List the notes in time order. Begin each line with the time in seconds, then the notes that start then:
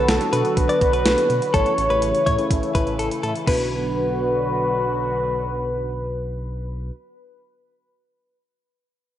Already playing: D3 F#3 B3 F#4 A4 B4
0.08 B1 A4, snare, closed hi-hat
0.21 closed hi-hat
0.33 B2 B3 D4 F#4 B4, closed hi-hat
0.45 closed hi-hat
0.57 B1 B4, kick, closed hi-hat
0.69 D5, closed hi-hat
0.81 B1, kick, closed hi-hat
0.93 B1 B4, closed hi-hat
1.06 B1 B3 D4 A4, snare, closed hi-hat
1.18 closed hi-hat
1.30 B2, closed hi-hat
1.42 closed hi-hat
1.54 A1 C#3 E3 A3 C#4 E4 A4 C#5, kick, closed hi-hat
1.66 closed hi-hat
1.78 A1, closed hi-hat
1.90 A1 A3 C#4 G4 B4, closed hi-hat
2.02 A1, closed hi-hat
2.15 closed hi-hat
2.26 A2 C#5, kick, closed hi-hat
2.39 A3 C#4 E4, closed hi-hat
2.51 A1, kick, closed hi-hat
2.63 closed hi-hat
2.75 A1 B4, kick, closed hi-hat
2.87 A1, closed hi-hat
2.99 A1 A4, closed hi-hat
3.11 closed hi-hat
3.23 A2 A4, closed hi-hat
3.36 closed hi-hat
3.46 B1 D3 F#3 B3 D4 F#4 B4, kick, crash